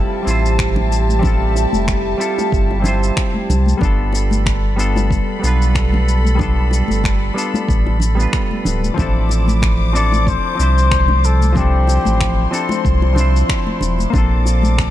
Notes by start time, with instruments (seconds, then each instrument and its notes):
Already playing: clean electric guitar G3 C4 E4 F4 A4, string section G4 E5 A5
0.23 sub bass A1, clean electric guitar G3 C4
0.27 clean electric guitar E4 F4 C5, shaker
0.46 shaker
0.59 finger snap, kick, shaker
0.76 high conga, low conga
0.92 shaker
1.09 high conga, shaker
1.19 clean electric guitar G3 C4, low conga
1.23 clean electric guitar E4 F4 A4, kick, shaker
1.56 high bongo, shaker
1.73 sub bass F1, high conga, shaker
1.88 finger snap, kick, shaker
2.18 clean electric guitar G3 C4 E4 F4, shaker
2.22 clean electric guitar A4
2.38 high bongo, high conga, shaker
2.52 sub bass G1, kick, shaker
2.71 high bongo
2.80 clean electric guitar G3 C4 E4, low conga
2.85 clean electric guitar F4 C5, shaker
3.03 shaker
3.17 finger snap, kick, shaker
3.34 high conga
3.49 sub bass C2, low conga, shaker
3.66 high conga, shaker
3.77 clean electric guitar G3 B3, low conga
3.81 sub bass G1, clean electric guitar D4 F4 A4, string section A4 B5, kick, shaker
4.13 high bongo, shaker
4.31 high conga, shaker
4.46 finger snap, kick, shaker
4.76 clean electric guitar G3 B3 D4 F4 A4, shaker
4.96 high bongo, high conga, shaker
5.11 kick, shaker
5.39 sub bass B1, clean electric guitar G3 B3
5.43 clean electric guitar D4 F4, shaker
5.48 clean electric guitar B4
5.62 shaker
5.75 finger snap, kick, shaker
5.92 high conga, low conga
6.09 shaker
6.25 high conga, shaker
6.35 clean electric guitar G3 B3, low conga
6.40 clean electric guitar D4 F4 A4, kick, shaker
6.71 high bongo, shaker
6.88 sub bass G1, high conga, shaker
7.04 finger snap, kick, shaker
7.34 clean electric guitar G3 B3 D4 F4, shaker
7.38 clean electric guitar A4
7.54 high bongo, high conga, shaker
7.68 sub bass A1, kick, shaker
7.87 high bongo
8.00 low conga, shaker
8.15 clean electric guitar G3 B3 D4
8.20 clean electric guitar F4 B4, shaker
8.33 finger snap, kick, shaker
8.51 high conga
8.65 sub bass D1, low conga, shaker
8.84 high conga, shaker
8.94 sub bass A1, clean electric guitar F3 C4 D4, string section C5, kick, low conga
8.98 clean electric guitar E4 A4, string section D6, shaker
9.29 high bongo, shaker
9.48 high conga, shaker
9.62 finger snap, kick, shaker
9.93 clean electric guitar F3 C4 D4 E4, muted trumpet D5, shaker
9.97 clean electric guitar A4
10.12 high bongo, high conga, shaker
10.27 muted trumpet C5, kick, shaker
10.55 clean electric guitar F3 C4
10.59 sub bass C2, clean electric guitar D4 E4 C5, shaker
10.78 shaker
10.91 finger snap, kick, shaker
11.08 high conga, low conga
11.24 muted trumpet A4, shaker
11.42 high conga, shaker
11.53 clean electric guitar F3 C4 D4, string section C6, kick, low conga
11.57 clean electric guitar E4 A4, muted trumpet G4, shaker
11.88 high bongo, shaker
12.05 sub bass A1, high conga, shaker
12.20 finger snap, kick, shaker
12.51 clean electric guitar F3 C4 D4 E4 A4, shaker
12.69 high bongo, high conga, shaker
12.85 sub bass C2, kick, shaker
13.02 high bongo
13.13 clean electric guitar F3 C4 D4, low conga
13.18 clean electric guitar E4 C5, shaker
13.36 shaker
13.49 finger snap, kick, shaker
13.67 high conga
13.81 sub bass E1, low conga, shaker
13.99 high conga, shaker
14.10 sub bass A#1, clean electric guitar A#3 C4, string section A5 D6, kick, low conga
14.14 clean electric guitar D4 F4 A4, shaker
14.46 high bongo, shaker
14.63 high conga, shaker
14.78 finger snap, kick, shaker